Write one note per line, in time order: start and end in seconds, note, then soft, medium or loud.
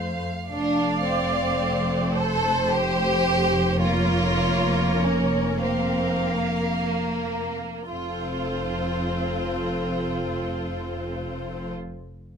0.00 0.24 F2 soft
0.00 0.24 A3 soft
0.00 0.23 C5 soft
0.00 0.48 F5 soft
0.49 7.56 F1 soft
0.49 7.56 F2 soft
0.49 3.77 A3 soft
0.49 1.01 D4 medium
0.49 2.12 D5 soft
0.49 2.11 F5 soft
1.05 2.16 C4 medium
2.14 2.71 A4 medium
2.14 3.77 C5 medium
2.14 3.81 C5 soft
2.71 3.81 G4 medium
3.81 5.58 A#3 medium
3.81 4.96 F4 medium
3.81 5.58 A#4 medium
3.81 5.62 C#5 medium
4.98 5.62 C#4 medium
5.61 7.56 A#3 soft
5.61 6.32 C4 medium
5.61 7.56 A#4 soft
5.61 7.59 F5 soft
6.31 7.90 A#3 soft
7.90 11.71 F1 soft
7.90 11.71 F2 soft
7.90 11.70 C4 soft
7.90 11.70 F4 soft
7.90 11.70 A4 soft
7.90 11.72 C5 soft